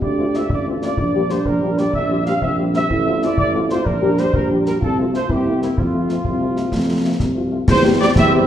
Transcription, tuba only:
0.02 0.42 D2 soft
0.50 0.90 A1 soft
0.97 1.38 A#1 soft
1.46 1.86 A#1 soft
1.93 2.34 A#1 soft
2.42 2.82 A#1 medium
2.89 3.29 A1 medium
3.38 3.78 A1 medium
3.86 4.26 A#1 medium
4.34 4.73 A#1 medium
4.81 5.17 C2 medium
5.30 5.69 C2 soft
5.77 6.17 F2 soft
6.26 6.65 C2 soft
6.73 7.12 F2 soft
7.20 7.60 C2 medium
7.67 8.08 E2 medium
8.16 8.47 E2 medium

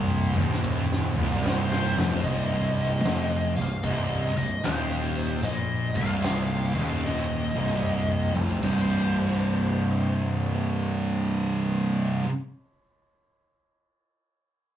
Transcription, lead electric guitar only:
1.43 2.26 C5 medium
2.23 3.56 D#5 medium
3.56 3.84 F5 loud
3.85 4.33 D#5 loud
4.37 4.65 D#5 medium
4.65 5.46 C5 medium
5.44 5.96 D#5 medium
5.97 7.05 F5 loud
7.06 8.33 D#5 medium
8.64 12.22 C5 medium

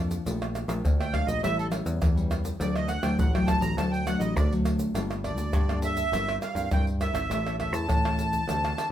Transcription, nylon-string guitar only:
0.00 0.23 F2 medium
0.00 0.21 F3 medium
0.00 0.21 A#3 medium
0.00 0.21 D4 medium
0.25 0.81 A#2 medium
0.25 0.65 A3 medium
0.25 0.65 D4 medium
0.25 0.65 G4 medium
0.68 1.08 A3 medium
0.68 1.08 D4 medium
0.68 1.09 G4 medium
0.85 1.40 A#2 medium
1.13 1.38 A3 medium
1.13 1.39 D4 medium
1.13 1.39 G4 medium
1.43 1.99 A2 medium
1.43 1.68 G3 medium
1.43 1.68 C#4 medium
1.43 1.68 E4 medium
1.71 1.99 G3 medium
1.71 1.99 C#4 medium
1.71 2.00 E4 medium
2.01 2.57 E3 medium
2.16 2.55 G3 medium
2.16 2.56 C#4 medium
2.16 2.56 E4 medium
2.60 3.16 D3 medium
2.60 2.88 F#3 medium
2.60 2.88 A3 medium
2.60 2.88 D4 medium
3.02 3.28 F#3 medium
3.02 3.28 A3 medium
3.02 3.28 D4 medium
3.18 3.74 A2 medium
3.33 3.73 F#3 medium
3.33 3.73 A3 medium
3.33 3.73 D4 medium
3.77 4.33 D3 medium
3.77 4.02 F#3 medium
3.77 4.02 A3 medium
3.77 4.03 D4 medium
4.06 4.34 F#3 medium
4.06 4.34 A3 medium
4.06 4.34 D4 medium
4.36 4.92 A2 medium
4.52 4.91 F#3 medium
4.52 4.91 A3 medium
4.52 4.91 D4 medium
4.95 5.51 G3 soft
4.95 5.20 A#3 medium
4.95 5.20 D4 medium
4.95 5.20 A4 medium
5.24 5.64 A#3 medium
5.24 5.64 D4 medium
5.24 5.64 A4 medium
5.53 6.09 D3 medium
5.70 6.09 A#3 medium
5.70 6.09 D4 medium
5.70 6.09 A4 medium
6.13 6.69 G3 medium
6.13 6.40 C4 medium
6.13 6.41 E4 medium
6.13 6.41 A#4 medium
6.57 6.67 C4 medium
6.57 6.67 E4 medium
6.57 6.67 A#4 medium
6.73 7.28 G3 medium
6.73 6.89 C4 soft
6.73 6.90 E4 medium
6.73 6.90 A#4 medium
7.01 7.20 C4 medium
7.01 7.20 E4 medium
7.01 7.20 A#4 medium
7.30 7.86 A3 medium
7.30 7.39 C#4 soft
7.30 7.39 E4 medium
7.30 7.39 A4 medium
7.46 7.55 C#4 medium
7.46 7.56 E4 medium
7.46 7.56 A4 medium
7.59 7.99 C#4 medium
7.59 7.99 E4 medium
7.59 7.99 A4 medium
7.89 8.45 E3 medium
8.05 8.44 C#4 medium
8.05 8.44 E4 medium
8.05 8.44 A4 medium
8.48 8.92 D3 medium
8.48 8.92 C4 medium
8.48 8.92 G4 medium
8.48 8.92 A4 medium

